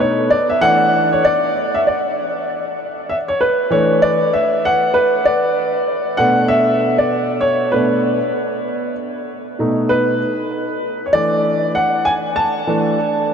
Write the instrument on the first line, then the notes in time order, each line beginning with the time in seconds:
upright piano
Already playing: B2 A3 D#4
0.00 C#5
0.30 D5
0.50 E5
0.61 E3 A3 D4 F#5
1.12 C#5
1.25 D5
1.75 E5
1.87 D5
3.09 E5
3.28 C#5
3.41 B4
3.70 E3 A3 D4 C#5
4.02 D5
4.33 E5
4.65 F#5
4.94 B4
5.25 D5
6.17 B2 A3 D4 F#5
6.48 E5
6.98 D5
7.41 C#5
7.72 B2 A3 D4 B4
9.59 B2 A3 D#4
9.89 B4
11.06 C#5
11.13 E3 A3 D4 D5
11.75 F#5
12.05 G#5
12.36 A5
12.67 E3 A3 D4